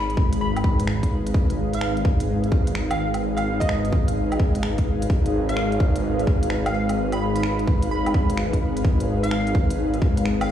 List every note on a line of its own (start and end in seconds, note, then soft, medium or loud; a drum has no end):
0.00 5.08 G#1 medium
0.00 10.51 G#3 medium
0.00 10.51 D#4 medium
0.00 10.51 G#4 medium
0.00 10.51 B4 medium
0.00 10.51 F5 medium
0.00 0.10 B5 medium
0.10 closed hi-hat soft
0.17 kick loud
0.33 closed hi-hat medium
0.41 0.88 B5 medium
0.56 closed hi-hat soft
0.56 low woodblock medium
0.64 kick loud
0.80 closed hi-hat medium
0.87 finger snap loud
1.03 kick medium
1.03 closed hi-hat soft
1.27 closed hi-hat medium
1.34 kick loud
1.50 closed hi-hat soft
1.73 1.98 F5 medium
1.73 closed hi-hat medium
1.81 finger snap loud
1.97 closed hi-hat soft
2.05 kick loud
2.20 closed hi-hat medium
2.44 closed hi-hat soft
2.52 kick loud
2.67 closed hi-hat medium
2.75 finger snap loud
2.91 2.96 F5 medium
2.91 closed hi-hat soft
2.91 low woodblock medium
2.98 3.08 F5 medium
3.14 closed hi-hat medium
3.14 low woodblock soft
3.37 3.58 F5 loud
3.37 closed hi-hat soft
3.37 low woodblock soft
3.60 3.92 D#5 medium
3.60 kick medium
3.60 closed hi-hat medium
3.69 finger snap loud
3.85 closed hi-hat soft
3.93 kick loud
4.08 closed hi-hat medium
4.32 closed hi-hat soft
4.32 low woodblock medium
4.40 kick loud
4.55 closed hi-hat medium
4.63 finger snap loud
4.78 kick medium
4.78 closed hi-hat soft
5.02 closed hi-hat medium
5.10 10.51 G#1 medium
5.10 kick loud
5.26 closed hi-hat soft
5.49 5.73 F5 medium
5.49 closed hi-hat soft
5.57 finger snap loud
5.72 closed hi-hat soft
5.80 kick loud
5.96 closed hi-hat medium
6.19 closed hi-hat soft
6.27 kick loud
6.43 closed hi-hat medium
6.50 finger snap loud
6.66 6.71 F5 medium
6.66 closed hi-hat soft
6.66 low woodblock medium
6.74 6.84 F5 medium
6.89 closed hi-hat medium
6.89 low woodblock soft
7.12 7.33 B5 medium
7.12 closed hi-hat soft
7.12 low woodblock soft
7.35 7.60 B5 medium
7.35 closed hi-hat medium
7.43 finger snap loud
7.59 closed hi-hat soft
7.67 kick loud
7.83 closed hi-hat medium
7.91 8.38 B5 medium
8.06 closed hi-hat soft
8.06 low woodblock medium
8.14 kick loud
8.30 closed hi-hat soft
8.37 finger snap loud
8.53 kick medium
8.53 closed hi-hat soft
8.77 closed hi-hat medium
8.85 kick loud
9.00 closed hi-hat soft
9.23 9.48 F5 medium
9.23 closed hi-hat medium
9.31 finger snap loud
9.47 closed hi-hat soft
9.55 kick loud
9.70 closed hi-hat medium
9.94 closed hi-hat soft
10.02 kick loud
10.17 closed hi-hat medium
10.25 finger snap loud
10.41 10.46 F5 medium
10.41 closed hi-hat soft
10.41 low woodblock medium